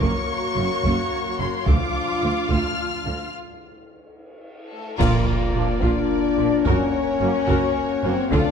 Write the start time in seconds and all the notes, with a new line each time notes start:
Already playing: A#4
0.00 F#1 F#2 F#3 A#3 F#4 C#5 C#6, taiko
0.56 F#1 F#2 C#3
0.84 F#1 F#2 A#3, taiko
1.40 F#1 F#2 C#3 C6
1.66 D2 F3 A3 D4 F4 F5 D6, taiko
2.22 D2 D3
2.50 D2 A3 F6, taiko
3.06 D2 D3
4.71 A3 A4
4.99 A#1 A#2 A#3 F4 A#4 D5, concert bass drum, taiko, crash, impact
5.54 A#1 A#2 F3 A#3 D4 F4
5.81 A#1 A#2 D4 F4 D5, taiko
6.38 A#1 A#2 F3 A#3 D4 F4
6.64 F#1 F#2 C#4 F#4 A#4 C#5 F#5, taiko
7.20 F#1 F#2 F#3 A#3 C#4 F#4
7.48 F#1 F#2 F#4 A#4, taiko
8.03 F#1 F#2 F#3 A#3 C4 C#4 F#4 C5
8.31 D2 D3 D4 F4 A4 D5 F5, taiko